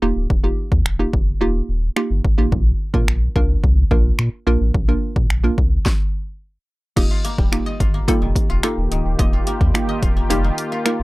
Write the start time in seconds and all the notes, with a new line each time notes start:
0.02 D#1 A#3 D#4 F4 G4
0.16 D1
0.30 D#1, kick
0.44 A#3 D#4 F4 G4
0.72 D#2, kick
0.86 D#1, finger snap
0.99 A#3 D#4 F4 G4
1.13 F1, kick
1.41 D#1 A#3 D#4 F4 G4
1.69 D#1
1.96 A#3 D#4 F4 G4, finger snap
2.10 G1
2.25 G#1, kick
2.38 A1 A#3 D#4 F4 G4
2.52 A#1, kick
2.94 A#2 A#3 D4 F4 A#4, kick
3.08 A#1, finger snap
3.36 C2 A#3 D4 F4 A#4, kick
3.64 C2, kick
3.91 A#1 A#3 D4 F4 A#4, kick
4.19 A#2, finger snap
4.47 A#1 A#3 D4 F4 A#4
4.61 A1
4.74 A#1, kick
4.88 A#3 D4 F4 A#4
5.16 A#2, kick
5.30 A#1, finger snap
5.44 A#3 D4 F4 A#4
5.58 C2, kick
5.86 kick, snare
6.96 D#1 D#3 A#3 D#4 F4 G4 D#5, kick, closed hi-hat, crash
7.11 F4
7.25 A#3, closed hi-hat
7.38 D#1 G3, kick
7.52 A#3 D#4 F4 G4, finger snap, closed hi-hat
7.66 D#5
7.80 G1 F4, kick, closed hi-hat
7.94 A#3
8.08 G3 A#3 D#4 F4 A4, kick, closed hi-hat
8.22 F1 D#3
8.36 kick, closed hi-hat
8.50 D#1 F4
8.63 A#3 D#4 F4 A4, finger snap, closed hi-hat
8.78 D#1
8.91 C#1 D#3, closed hi-hat
9.05 D1
9.19 D#1 A#3 D#4 F4 G4 D#5, kick, closed hi-hat
9.33 F4
9.47 A#3, closed hi-hat
9.61 D#2 G3, kick
9.74 A#3 D#4 F4 G4, finger snap, closed hi-hat
9.89 D#5
10.03 D#1 F4, kick, closed hi-hat
10.17 A#3
10.30 F1 G3 A#3 D#4 F4 G4, closed hi-hat
10.44 D#3
10.58 closed hi-hat
10.72 F4
10.85 A#3 D#4 F4 A#4, finger snap, closed hi-hat
11.00 D#1